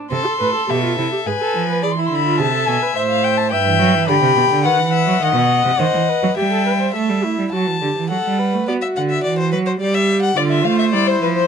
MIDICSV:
0, 0, Header, 1, 5, 480
1, 0, Start_track
1, 0, Key_signature, 0, "minor"
1, 0, Tempo, 570342
1, 94, Time_signature, 3, 2, 24, 8
1, 9654, End_track
2, 0, Start_track
2, 0, Title_t, "Violin"
2, 0, Program_c, 0, 40
2, 97, Note_on_c, 0, 84, 69
2, 585, Note_on_c, 0, 76, 68
2, 598, Note_off_c, 0, 84, 0
2, 1063, Note_on_c, 0, 80, 64
2, 1075, Note_off_c, 0, 76, 0
2, 1540, Note_on_c, 0, 83, 52
2, 1553, Note_off_c, 0, 80, 0
2, 1608, Note_on_c, 0, 84, 58
2, 1621, Note_off_c, 0, 83, 0
2, 1673, Note_on_c, 0, 83, 51
2, 1686, Note_off_c, 0, 84, 0
2, 1737, Note_on_c, 0, 84, 49
2, 1750, Note_off_c, 0, 83, 0
2, 1807, Note_on_c, 0, 83, 67
2, 1820, Note_off_c, 0, 84, 0
2, 2016, Note_off_c, 0, 83, 0
2, 2022, Note_on_c, 0, 81, 69
2, 2257, Note_on_c, 0, 80, 75
2, 2270, Note_off_c, 0, 81, 0
2, 2486, Note_off_c, 0, 80, 0
2, 2491, Note_on_c, 0, 76, 67
2, 2539, Note_off_c, 0, 76, 0
2, 2609, Note_on_c, 0, 77, 70
2, 2725, Note_on_c, 0, 79, 68
2, 2737, Note_off_c, 0, 77, 0
2, 2840, Note_on_c, 0, 81, 75
2, 2852, Note_off_c, 0, 79, 0
2, 2953, Note_off_c, 0, 81, 0
2, 2958, Note_on_c, 0, 79, 82
2, 3423, Note_off_c, 0, 79, 0
2, 3433, Note_on_c, 0, 83, 84
2, 3901, Note_off_c, 0, 83, 0
2, 3911, Note_on_c, 0, 78, 71
2, 4876, Note_on_c, 0, 75, 74
2, 4888, Note_off_c, 0, 78, 0
2, 5355, Note_off_c, 0, 75, 0
2, 5360, Note_on_c, 0, 76, 67
2, 5838, Note_off_c, 0, 76, 0
2, 8724, Note_on_c, 0, 74, 75
2, 8772, Note_off_c, 0, 74, 0
2, 8845, Note_on_c, 0, 76, 68
2, 8961, Note_on_c, 0, 77, 68
2, 8974, Note_off_c, 0, 76, 0
2, 9073, Note_off_c, 0, 77, 0
2, 9078, Note_on_c, 0, 76, 80
2, 9127, Note_off_c, 0, 76, 0
2, 9202, Note_on_c, 0, 74, 84
2, 9322, Note_on_c, 0, 72, 77
2, 9335, Note_off_c, 0, 74, 0
2, 9441, Note_off_c, 0, 72, 0
2, 9446, Note_on_c, 0, 71, 75
2, 9494, Note_off_c, 0, 71, 0
2, 9563, Note_on_c, 0, 72, 85
2, 9654, Note_off_c, 0, 72, 0
2, 9654, End_track
3, 0, Start_track
3, 0, Title_t, "Violin"
3, 0, Program_c, 1, 40
3, 96, Note_on_c, 1, 69, 70
3, 323, Note_off_c, 1, 69, 0
3, 341, Note_on_c, 1, 69, 67
3, 1070, Note_on_c, 1, 71, 67
3, 1082, Note_off_c, 1, 69, 0
3, 1535, Note_off_c, 1, 71, 0
3, 1540, Note_on_c, 1, 74, 64
3, 1607, Note_off_c, 1, 74, 0
3, 1780, Note_on_c, 1, 76, 76
3, 2941, Note_off_c, 1, 76, 0
3, 2968, Note_on_c, 1, 71, 79
3, 3441, Note_on_c, 1, 79, 76
3, 3453, Note_off_c, 1, 71, 0
3, 3915, Note_on_c, 1, 78, 73
3, 3928, Note_off_c, 1, 79, 0
3, 4148, Note_off_c, 1, 78, 0
3, 4153, Note_on_c, 1, 76, 77
3, 4396, Note_on_c, 1, 78, 75
3, 4408, Note_off_c, 1, 76, 0
3, 5355, Note_off_c, 1, 78, 0
3, 5360, Note_on_c, 1, 79, 71
3, 5838, Note_off_c, 1, 79, 0
3, 5848, Note_on_c, 1, 76, 58
3, 6299, Note_off_c, 1, 76, 0
3, 6335, Note_on_c, 1, 81, 60
3, 6810, Note_off_c, 1, 81, 0
3, 6819, Note_on_c, 1, 78, 65
3, 7291, Note_off_c, 1, 78, 0
3, 7302, Note_on_c, 1, 74, 75
3, 7349, Note_off_c, 1, 74, 0
3, 7419, Note_on_c, 1, 76, 71
3, 7467, Note_off_c, 1, 76, 0
3, 7542, Note_on_c, 1, 78, 68
3, 7589, Note_off_c, 1, 78, 0
3, 7658, Note_on_c, 1, 76, 82
3, 7769, Note_off_c, 1, 76, 0
3, 7774, Note_on_c, 1, 74, 81
3, 7892, Note_off_c, 1, 74, 0
3, 7899, Note_on_c, 1, 72, 79
3, 8011, Note_off_c, 1, 72, 0
3, 8016, Note_on_c, 1, 71, 78
3, 8064, Note_off_c, 1, 71, 0
3, 8131, Note_on_c, 1, 72, 72
3, 8179, Note_off_c, 1, 72, 0
3, 8253, Note_on_c, 1, 74, 85
3, 8368, Note_on_c, 1, 76, 93
3, 8381, Note_off_c, 1, 74, 0
3, 8601, Note_off_c, 1, 76, 0
3, 8606, Note_on_c, 1, 78, 75
3, 8724, Note_on_c, 1, 74, 72
3, 8737, Note_off_c, 1, 78, 0
3, 8954, Note_off_c, 1, 74, 0
3, 8959, Note_on_c, 1, 72, 79
3, 9654, Note_off_c, 1, 72, 0
3, 9654, End_track
4, 0, Start_track
4, 0, Title_t, "Viola"
4, 0, Program_c, 2, 41
4, 0, Note_on_c, 2, 62, 55
4, 90, Note_off_c, 2, 62, 0
4, 96, Note_on_c, 2, 60, 63
4, 216, Note_on_c, 2, 69, 74
4, 229, Note_off_c, 2, 60, 0
4, 334, Note_off_c, 2, 69, 0
4, 339, Note_on_c, 2, 71, 87
4, 455, Note_off_c, 2, 71, 0
4, 460, Note_on_c, 2, 69, 72
4, 577, Note_off_c, 2, 69, 0
4, 582, Note_on_c, 2, 67, 77
4, 696, Note_off_c, 2, 67, 0
4, 701, Note_on_c, 2, 65, 76
4, 818, Note_off_c, 2, 65, 0
4, 823, Note_on_c, 2, 64, 67
4, 937, Note_off_c, 2, 64, 0
4, 942, Note_on_c, 2, 67, 67
4, 990, Note_off_c, 2, 67, 0
4, 1062, Note_on_c, 2, 68, 77
4, 1110, Note_off_c, 2, 68, 0
4, 1180, Note_on_c, 2, 69, 81
4, 1415, Note_off_c, 2, 69, 0
4, 1424, Note_on_c, 2, 71, 69
4, 1539, Note_off_c, 2, 71, 0
4, 1543, Note_on_c, 2, 68, 79
4, 1590, Note_off_c, 2, 68, 0
4, 1660, Note_on_c, 2, 64, 77
4, 1892, Note_off_c, 2, 64, 0
4, 1898, Note_on_c, 2, 65, 76
4, 2016, Note_on_c, 2, 68, 79
4, 2029, Note_off_c, 2, 65, 0
4, 2128, Note_off_c, 2, 68, 0
4, 2133, Note_on_c, 2, 69, 82
4, 2374, Note_on_c, 2, 71, 75
4, 2387, Note_off_c, 2, 69, 0
4, 2487, Note_off_c, 2, 71, 0
4, 2492, Note_on_c, 2, 72, 92
4, 2968, Note_on_c, 2, 76, 79
4, 2980, Note_off_c, 2, 72, 0
4, 3439, Note_on_c, 2, 67, 79
4, 3452, Note_off_c, 2, 76, 0
4, 3914, Note_on_c, 2, 71, 72
4, 3926, Note_off_c, 2, 67, 0
4, 4390, Note_off_c, 2, 71, 0
4, 4395, Note_on_c, 2, 75, 80
4, 4879, Note_on_c, 2, 72, 74
4, 4892, Note_off_c, 2, 75, 0
4, 5121, Note_on_c, 2, 71, 68
4, 5134, Note_off_c, 2, 72, 0
4, 5354, Note_off_c, 2, 71, 0
4, 5359, Note_on_c, 2, 67, 66
4, 5408, Note_off_c, 2, 67, 0
4, 5483, Note_on_c, 2, 69, 64
4, 5600, Note_off_c, 2, 69, 0
4, 5605, Note_on_c, 2, 71, 74
4, 5654, Note_off_c, 2, 71, 0
4, 5727, Note_on_c, 2, 72, 58
4, 5844, Note_off_c, 2, 72, 0
4, 5849, Note_on_c, 2, 69, 62
4, 6093, Note_on_c, 2, 64, 63
4, 6106, Note_off_c, 2, 69, 0
4, 6334, Note_on_c, 2, 66, 63
4, 6346, Note_off_c, 2, 64, 0
4, 6573, Note_off_c, 2, 66, 0
4, 6578, Note_on_c, 2, 67, 58
4, 6815, Note_off_c, 2, 67, 0
4, 6822, Note_on_c, 2, 69, 64
4, 7061, Note_on_c, 2, 71, 70
4, 7074, Note_off_c, 2, 69, 0
4, 7302, Note_on_c, 2, 66, 75
4, 7315, Note_off_c, 2, 71, 0
4, 8248, Note_off_c, 2, 66, 0
4, 8253, Note_on_c, 2, 67, 82
4, 8718, Note_off_c, 2, 67, 0
4, 8729, Note_on_c, 2, 65, 79
4, 9195, Note_off_c, 2, 65, 0
4, 9204, Note_on_c, 2, 64, 71
4, 9654, Note_off_c, 2, 64, 0
4, 9654, End_track
5, 0, Start_track
5, 0, Title_t, "Cello"
5, 0, Program_c, 3, 42
5, 95, Note_on_c, 3, 48, 66
5, 162, Note_off_c, 3, 48, 0
5, 339, Note_on_c, 3, 45, 61
5, 407, Note_off_c, 3, 45, 0
5, 584, Note_on_c, 3, 47, 67
5, 820, Note_off_c, 3, 47, 0
5, 826, Note_on_c, 3, 48, 60
5, 893, Note_off_c, 3, 48, 0
5, 1065, Note_on_c, 3, 44, 53
5, 1132, Note_off_c, 3, 44, 0
5, 1301, Note_on_c, 3, 53, 63
5, 1540, Note_on_c, 3, 52, 68
5, 1552, Note_off_c, 3, 53, 0
5, 1775, Note_off_c, 3, 52, 0
5, 1780, Note_on_c, 3, 50, 65
5, 2018, Note_on_c, 3, 48, 70
5, 2030, Note_off_c, 3, 50, 0
5, 2252, Note_off_c, 3, 48, 0
5, 2257, Note_on_c, 3, 47, 71
5, 2324, Note_off_c, 3, 47, 0
5, 2493, Note_on_c, 3, 45, 63
5, 2967, Note_on_c, 3, 43, 73
5, 2979, Note_off_c, 3, 45, 0
5, 3081, Note_on_c, 3, 52, 89
5, 3094, Note_off_c, 3, 43, 0
5, 3194, Note_off_c, 3, 52, 0
5, 3199, Note_on_c, 3, 54, 87
5, 3321, Note_on_c, 3, 52, 78
5, 3333, Note_off_c, 3, 54, 0
5, 3432, Note_off_c, 3, 52, 0
5, 3437, Note_on_c, 3, 50, 89
5, 3485, Note_off_c, 3, 50, 0
5, 3554, Note_on_c, 3, 48, 81
5, 3671, Note_off_c, 3, 48, 0
5, 3675, Note_on_c, 3, 47, 77
5, 3723, Note_off_c, 3, 47, 0
5, 3793, Note_on_c, 3, 50, 83
5, 3914, Note_on_c, 3, 51, 80
5, 3927, Note_off_c, 3, 50, 0
5, 4033, Note_on_c, 3, 52, 88
5, 4045, Note_off_c, 3, 51, 0
5, 4267, Note_off_c, 3, 52, 0
5, 4272, Note_on_c, 3, 54, 72
5, 4390, Note_off_c, 3, 54, 0
5, 4394, Note_on_c, 3, 51, 88
5, 4507, Note_off_c, 3, 51, 0
5, 4512, Note_on_c, 3, 47, 77
5, 4749, Note_off_c, 3, 47, 0
5, 4755, Note_on_c, 3, 48, 73
5, 4803, Note_off_c, 3, 48, 0
5, 4875, Note_on_c, 3, 51, 81
5, 4924, Note_off_c, 3, 51, 0
5, 4999, Note_on_c, 3, 52, 78
5, 5066, Note_off_c, 3, 52, 0
5, 5245, Note_on_c, 3, 54, 87
5, 5292, Note_off_c, 3, 54, 0
5, 5365, Note_on_c, 3, 55, 71
5, 5840, Note_off_c, 3, 55, 0
5, 5850, Note_on_c, 3, 57, 70
5, 5973, Note_on_c, 3, 55, 68
5, 5985, Note_off_c, 3, 57, 0
5, 6093, Note_on_c, 3, 57, 62
5, 6106, Note_off_c, 3, 55, 0
5, 6210, Note_off_c, 3, 57, 0
5, 6215, Note_on_c, 3, 55, 64
5, 6263, Note_off_c, 3, 55, 0
5, 6336, Note_on_c, 3, 54, 75
5, 6457, Note_on_c, 3, 52, 65
5, 6470, Note_off_c, 3, 54, 0
5, 6574, Note_off_c, 3, 52, 0
5, 6579, Note_on_c, 3, 50, 67
5, 6627, Note_off_c, 3, 50, 0
5, 6701, Note_on_c, 3, 52, 68
5, 6818, Note_off_c, 3, 52, 0
5, 6823, Note_on_c, 3, 54, 58
5, 6870, Note_off_c, 3, 54, 0
5, 6944, Note_on_c, 3, 55, 72
5, 7184, Note_on_c, 3, 57, 67
5, 7196, Note_off_c, 3, 55, 0
5, 7299, Note_off_c, 3, 57, 0
5, 7304, Note_on_c, 3, 59, 75
5, 7371, Note_off_c, 3, 59, 0
5, 7543, Note_on_c, 3, 50, 64
5, 7772, Note_off_c, 3, 50, 0
5, 7777, Note_on_c, 3, 52, 71
5, 8018, Note_on_c, 3, 54, 73
5, 8030, Note_off_c, 3, 52, 0
5, 8248, Note_off_c, 3, 54, 0
5, 8253, Note_on_c, 3, 55, 74
5, 8718, Note_off_c, 3, 55, 0
5, 8727, Note_on_c, 3, 50, 78
5, 8966, Note_on_c, 3, 57, 81
5, 8978, Note_off_c, 3, 50, 0
5, 9202, Note_on_c, 3, 55, 75
5, 9214, Note_off_c, 3, 57, 0
5, 9441, Note_off_c, 3, 55, 0
5, 9446, Note_on_c, 3, 53, 73
5, 9654, Note_off_c, 3, 53, 0
5, 9654, End_track
0, 0, End_of_file